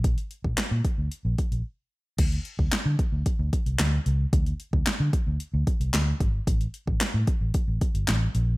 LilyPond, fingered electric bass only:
\new Staff \with { instrumentName = "Fingered electric bass" } { \clef bass \time 4/4 \key bes \lydian \tempo 4 = 112 bes,,8 r16 bes,,16 r16 bes,16 r16 d,16 r16 bes,,16 r16 bes,,16 r4 | d,8 r16 d,16 r16 d16 r16 d,16 r16 d,16 r16 bis,,16 d,8 cis,8 | d,8 r16 d,16 r16 d16 r16 d,16 r16 d,16 r16 bis,,16 d,8 gis,,8 | a,,8 r16 a,,16 r16 a,16 r16 a,,16 r16 a,,16 r16 g,,16 a,,8 bes,,8 | }